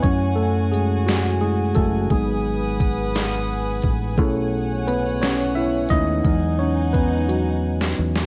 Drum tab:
HH |x---x-x---x-|x---x-x---x-|x---x-x---x-|x---x-x---x-|
SD |------o-----|------o-----|------o-----|---------o-o|
BD |o---------o-|o---o-----o-|o---------o-|o---o-------|